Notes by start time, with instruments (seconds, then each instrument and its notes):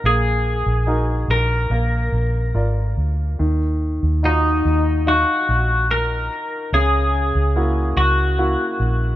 0.04 fingered electric bass A#1, grand piano A#3, clean electric guitar G#4
0.66 fingered electric bass A#1
0.87 grand piano D#4 F#4 A#4
1.28 fingered electric bass A#1, clean electric guitar A#4
1.70 fingered electric bass A#1, grand piano A#3
2.12 fingered electric bass A#1
2.54 fingered electric bass G#1, grand piano F4 A#4 D5
2.97 fingered electric bass D2
3.39 fingered electric bass D#2, grand piano D#3
4.03 fingered electric bass D#2
4.23 grand piano D#4 F4 F#4, clean electric guitar D#4
4.65 fingered electric bass D#2
5.07 grand piano D#4 F#4 F5, clean electric guitar F#4
5.49 fingered electric bass A#1
5.91 clean electric guitar A#4
6.73 fingered electric bass C#2, grand piano C#3, clean electric guitar G#4
7.35 fingered electric bass C#2
7.56 grand piano A#3 E4 F#4
7.97 fingered electric bass C#2, clean electric guitar F#4
8.38 grand piano A#3 E4 F#4
8.80 fingered electric bass A#1